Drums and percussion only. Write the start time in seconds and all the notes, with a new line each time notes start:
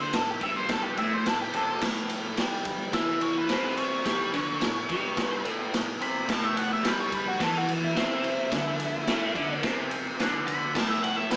0.13 snare, ride
0.41 kick, ride
0.69 kick, snare, ride
0.97 ride
1.26 snare, ride
1.54 ride
1.82 kick, snare, crash
2.10 ride
2.37 snare, ride
2.65 kick, ride
2.93 kick, snare, ride
3.21 ride
3.49 snare, ride
3.77 ride
4.06 kick, snare, ride
4.34 ride
4.61 snare, ride
4.89 kick, ride
5.17 kick, snare, ride
5.45 ride
5.74 snare, ride
6.01 ride
6.29 kick, snare, crash
6.57 ride
6.84 snare, ride
7.12 kick, ride
7.40 kick, snare, ride
7.69 ride
7.96 snare, ride
8.24 ride
8.52 kick, snare, ride
8.80 ride
9.07 snare, ride
9.35 kick, ride
9.63 kick, snare, ride
9.91 ride
10.20 snare, ride
10.48 ride
10.75 kick, snare, crash
11.04 ride
11.31 snare, ride